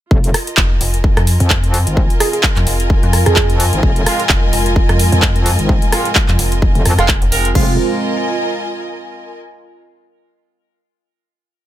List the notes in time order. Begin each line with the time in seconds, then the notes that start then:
0.11 F1 G#3 C4 F4, kick
0.18 A#4
0.24 closed hi-hat
0.34 D#5, cross-stick, open hi-hat
0.47 closed hi-hat
0.57 F1, kick, clap
0.71 G#5
0.81 F1, open hi-hat
0.94 closed hi-hat
1.04 kick
1.17 F2, cross-stick, closed hi-hat
1.27 open hi-hat
1.40 F2, closed hi-hat
1.50 kick, clap
1.64 closed hi-hat
1.74 open hi-hat
1.87 G#1, closed hi-hat
1.97 kick
2.10 closed hi-hat
2.20 G#4, cross-stick, open hi-hat
2.33 G#4, closed hi-hat
2.43 kick, clap
2.56 F2, clap, closed hi-hat
2.67 F1, open hi-hat
2.80 closed hi-hat
2.90 kick
3.03 F2, closed hi-hat
3.13 cross-stick, open hi-hat
3.26 F2 G#4, cross-stick, closed hi-hat
3.36 kick, clap
3.50 closed hi-hat
3.60 open hi-hat
3.73 G#1, closed hi-hat
3.83 F1, kick
3.96 closed hi-hat
4.06 G#3 C4 F4, cross-stick, open hi-hat
4.20 closed hi-hat
4.29 F1, kick, clap
4.53 F1, open hi-hat
4.66 closed hi-hat
4.76 kick
4.89 F2, cross-stick, closed hi-hat
4.99 open hi-hat
5.12 F2, closed hi-hat
5.22 kick, clap
5.36 closed hi-hat
5.46 open hi-hat
5.59 G#1, closed hi-hat
5.69 kick
5.82 closed hi-hat
5.92 G#3 C4 F4, cross-stick, open hi-hat
6.05 closed hi-hat
6.15 kick, clap
6.28 F2, clap, closed hi-hat
6.39 F1, open hi-hat
6.52 closed hi-hat
6.62 kick
6.75 F1, closed hi-hat
6.86 F2, cross-stick, open hi-hat
6.98 F1 G#3 C4 F4, cross-stick, closed hi-hat
7.08 kick, clap
7.22 F1, closed hi-hat
7.32 F1 G#3 C4 A#4, open hi-hat
7.45 closed hi-hat
7.55 F1 G#3 C4 F4, kick, crash
7.63 A#4
7.70 D#5
7.77 G#5